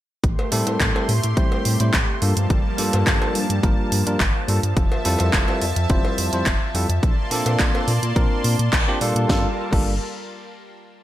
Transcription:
0.24 A1 A3 G4 C6, kick, closed hi-hat
0.39 cowbell
0.52 A2 G3 A3 C4 E4 A4, open hi-hat
0.67 A2, closed hi-hat, cowbell
0.80 A1, kick, clap, closed hi-hat
0.95 G3 A3 C4 E4 A4, cowbell
1.09 A2, open hi-hat
1.24 A2, closed hi-hat
1.36 A1 G3 A3 C4 E4 C5, kick, closed hi-hat
1.52 cowbell
1.65 A2, open hi-hat
1.80 A2 G3 A3 C4 E4 C5, closed hi-hat
1.93 A1, kick, clap, closed hi-hat
2.22 G2 F3 G3 A#3 D4 F4 A4 A5, open hi-hat
2.37 G2, closed hi-hat
2.50 G1, kick, closed hi-hat
2.78 G2 G3 A#3 D4 F4 A4, open hi-hat
2.93 G2, closed hi-hat, cowbell
3.07 G1, kick, clap, closed hi-hat
3.21 G3 A#3 D4 F4 A4, cowbell
3.35 G2, open hi-hat
3.50 G2, closed hi-hat
3.63 G1 G3 A#3 D4 F4 A#4, kick, closed hi-hat
3.92 G2, open hi-hat
4.06 G2 G3 A#3 D4 F4 A#4, closed hi-hat
4.20 G1, kick, clap, closed hi-hat
4.48 G2 G3 A#3 D4 F4 A4, open hi-hat
4.63 G2, closed hi-hat
4.76 F1 E5 A5, kick, closed hi-hat
4.92 cowbell
5.05 F2 G3 C4 E4 F4 A4, open hi-hat
5.19 F2, closed hi-hat, cowbell
5.33 F1, kick, clap, closed hi-hat
5.48 G3 C4 E4 F4 A4, cowbell
5.62 F2, open hi-hat
5.76 F2, closed hi-hat
5.90 F1 G3 C4 E4 F4 C5, kick, closed hi-hat
6.05 cowbell
6.18 F2, open hi-hat
6.33 F2 G3 C4 E4 F4 C5, closed hi-hat
6.46 F1, kick, clap, closed hi-hat
6.74 F2 G3 C4 E4 F4 A4, open hi-hat
6.89 F2, closed hi-hat
7.03 A#1 A#3 D5 A5 C6, kick, closed hi-hat
7.31 A#2 A#3 C4 D4 F4 A4, open hi-hat
7.46 A#2, closed hi-hat, cowbell
7.59 A#1, kick, clap, closed hi-hat
7.74 A#3 C4 D4 F4 A4, cowbell
7.88 A#2, open hi-hat
8.02 A#2, closed hi-hat
8.16 A#1 A#3 C4 D4 F4 A#4, kick, closed hi-hat
8.44 A#2, open hi-hat
8.59 A#2, closed hi-hat
8.73 A#1, kick, clap, closed hi-hat
8.88 A#3 C4 D4 F4 G4
9.01 A#2 G3 A#3 D4 F4 A4, open hi-hat
9.15 A#2, closed hi-hat
9.28 G1 G3 A#3 D4 F4 A4 A#4 A5, kick, snare
9.71 G1 G3 A#3 D4 F4 A4, kick, crash

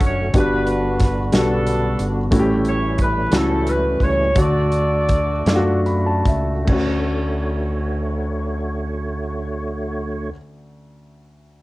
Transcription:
Already playing: D3 A3 C#4 D4 F#4
0.01 F#1, kick, closed hi-hat
0.05 C#5
0.33 G1 G2 D3 G3 A3 B3 D4 F#4, kick, closed hi-hat
0.38 B3 B4
0.67 B4, closed hi-hat
1.00 B4, kick, snare, closed hi-hat
1.32 B1 G3 B3 D4 F#4, snare, closed hi-hat
1.37 A4
1.67 closed hi-hat
1.99 G1, closed hi-hat
2.31 A1 A2 E3 G3 A3 C#4 E4 F#4, kick, closed hi-hat
2.40 G4
2.65 closed hi-hat
2.69 C#5
2.98 kick, closed hi-hat
3.02 B4
3.31 C#2 A3 C#4 E4 F#4, snare, closed hi-hat
3.36 A4
3.67 B4, closed hi-hat
4.00 C#2 C#5, kick, closed hi-hat
4.34 D2 D3 A3 D4 F#4, kick, closed hi-hat
4.39 F#4 A4 D5
4.72 closed hi-hat
5.09 kick, closed hi-hat
5.46 F#2 A3 D4 F4, snare, closed hi-hat
5.56 F#4
5.86 B5, closed hi-hat
6.06 A5
6.25 C#2 E5, kick, closed hi-hat
6.65 D2 D3 A3 C#4 F#4 C#5, kick, crash
6.70 D4 F#4

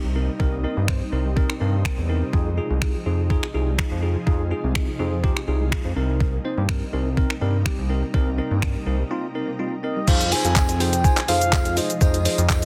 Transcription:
Already playing: C3 G3 A#3 D#4
0.04 C2
0.16 C4 D#4 A#4
0.29 G3
0.40 C2 G3 C4 D#4 A#4, kick
0.53 A#3
0.64 C4 D#4 A#4
0.77 G2 A#3
0.88 C4 D#4 C5, finger snap, kick
1.01 G3
1.12 C2 C4 D#4 A#4
1.25 G3
1.36 C4 D#4 A#4, kick
1.50 finger snap
1.61 G2 C4 D#4 A#4
1.74 A#3
1.85 G3 C4 D#4 A#4, finger snap, kick
1.98 E2
2.09 C4 D#4 A#4
2.22 G3
2.33 F2 F3 G#3 D#4 F4 G#4, kick
2.46 G#3
2.57 D#4 F4 G#4
2.70 C2 G#3
2.82 D#4 F4 G#4, finger snap, kick
2.95 F3
3.06 F2 C4 D#4 F4 G#4
3.19 F3
3.30 D#4 F4 G#4, kick
3.43 finger snap
3.54 C2 D#4 F4 G#4
3.67 G#3
3.78 F3 D#4 F4 G#4, finger snap, kick
3.91 F2
4.02 D#4 F4 G#4
4.16 F3
4.27 F2 F3 D#4 F4 G#4, kick
4.40 G#3
4.51 D#4 F4 G#4
4.64 C2 G#3
4.75 D#4 F4 G#4, finger snap, kick
4.88 F3
4.99 F2 C4 D#4 F4 G#4
5.12 F3
5.23 D#4 F4 G4, kick
5.37 finger snap
5.48 C2 D#4 F4 G#4
5.61 G#3
5.72 F3 D#4 F4 G#4, finger snap, kick
5.85 F2
5.96 C2 G3 A#3 C4 D#4 A#4
6.09 G3
6.20 G3, kick
6.33 A#3
6.45 C4 D#4 C5
6.57 G2 A#3
6.69 C4 D#4 A#4, finger snap, kick
6.82 G3
6.93 C2 C4 D#4 A#4
7.06 G3
7.17 C4 D#4 A#4, kick
7.30 finger snap
7.41 G2 C4 D#4 A#4
7.54 A#3
7.65 G3 C4 D#4 G4, finger snap, kick
7.78 C2
7.90 C4 D#4 A#4
8.03 G3
8.14 C2 G3 C4 D#4 A#4, kick
8.27 A#3
8.38 C4 D#4 A#4
8.51 G2 A#3
8.62 C4 D#4 A#4, finger snap, kick
8.75 G3
8.86 C2 C4 D#4 A#4
8.99 G3
9.11 C4 D#4 F4
9.35 C4 D#4 A#4
9.48 A#3
9.59 G3 C4 D#4 F4
9.83 C4 D#4 A#4 D#5
9.96 G3
10.07 F2 C3 F3 G#3 D#4 F4 G#4 C5 F5, kick, crash, tambourine, shaker
10.21 closed hi-hat, tambourine, shaker
10.32 D#4 F4 G#4 C5 G#5, open hi-hat, tambourine, shaker
10.45 F2, closed hi-hat, tambourine, shaker
10.56 D#4 F4 G#4 C5, kick, clap, tambourine, shaker
10.69 closed hi-hat, shaker
10.80 D#4 F4 G#4 C5 G5, open hi-hat, tambourine, shaker
10.93 closed hi-hat, tambourine, shaker
11.04 D#4 F4 G#4 C5 G#5, kick, tambourine, shaker
11.17 clap, closed hi-hat, shaker
11.28 F2 D#4 F4 G#4 C5 F5, open hi-hat, tambourine, shaker
11.41 closed hi-hat, shaker
11.53 D#4 F4 G#4 C5, kick, clap, tambourine, shaker
11.65 closed hi-hat, shaker
11.77 D#4 F4 G#4 C5 D#5, open hi-hat, tambourine, shaker
11.90 closed hi-hat, shaker
12.01 F2 D#4 F4 G#4 C5 D#5, kick, tambourine, shaker
12.14 closed hi-hat, tambourine, shaker
12.25 D#4 F4 G#4 C5, open hi-hat, tambourine, shaker
12.38 F2, closed hi-hat, tambourine, shaker
12.49 D#4 F4 G#4 C5, kick, clap, tambourine, shaker

